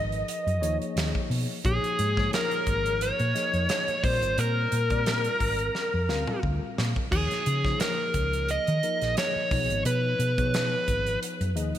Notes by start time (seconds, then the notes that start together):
Already playing: G#1 F3 D#4 G#4 A#4 B4 D#5
0.12 closed hi-hat
0.28 closed hi-hat
0.47 F#2, closed hi-hat
0.61 D#2 F3 A#3 D#4 G#4 C#5, closed hi-hat
0.81 muted fingered electric bass stroke, closed hi-hat
0.96 D#2, snare, closed hi-hat
1.15 kick
1.30 B2, open hi-hat
1.64 A#1 F3 A#3 D#4 G#4 C#5, kick, closed hi-hat
1.84 closed hi-hat
1.99 G#2, closed hi-hat
2.17 F3 A#3 D#4 G#4 C#5, kick, snare
2.33 A#4, snare, closed hi-hat
2.51 closed hi-hat
2.67 G#1, kick, closed hi-hat
2.86 closed hi-hat
3.01 C#5, closed hi-hat
3.19 A#2, closed hi-hat
3.34 F3 A#3 D#4 G#4 D#5, snare, closed hi-hat
3.53 F2, closed hi-hat
3.69 snare, closed hi-hat
3.88 muted fingered electric bass stroke, closed hi-hat
4.03 A#1 G3 C4 F4 A#4 C5 D5, kick, open hi-hat
4.22 G#1, closed hi-hat
4.38 A#2 A#4, closed hi-hat
4.72 A#2, closed hi-hat
4.90 G3 C4 F4 A#4 D5, kick, closed hi-hat
5.06 snare, closed hi-hat
5.24 closed hi-hat
5.40 G#1, kick, open hi-hat
5.59 closed hi-hat
5.75 snare
5.94 F2
6.09 D2 G3 C4 F4 A#4 F5, snare
6.27 mid tom
6.43 D2, kick
6.63 muted fingered electric bass stroke
6.78 A#2, snare
6.96 kick
7.11 D#2 F3 A#3 D#4 G#4 C#5, kick, crash
7.31 muted fingered electric bass stroke, snare, closed hi-hat
7.46 C#3, closed hi-hat
7.64 F3 A#3 D#4 G#4 C#5, kick, snare
7.80 A#4, snare, closed hi-hat
8.14 C#2, kick, closed hi-hat
8.33 closed hi-hat
8.49 D#5, closed hi-hat
8.67 D#3, closed hi-hat
8.83 F3 A#3 D#4 G#4 A#4, closed hi-hat
9.01 A#1, snare, closed hi-hat
9.17 C#5, snare, closed hi-hat
9.36 muted fingered electric bass stroke
9.51 B1 F3 B3 D#4 G#4 C#5, kick, open hi-hat
9.70 G#1, closed hi-hat
9.85 B2 B4, closed hi-hat
10.19 B2, closed hi-hat
10.38 F3 B3 D#4 G#4 C#5, kick, closed hi-hat
10.54 snare, closed hi-hat
10.88 G#1, kick, closed hi-hat
11.06 closed hi-hat
11.23 closed hi-hat
11.41 F#2, closed hi-hat
11.55 D#2 F3 A#3 D#4 G#4 D#5, closed hi-hat
11.75 muted fingered electric bass stroke, closed hi-hat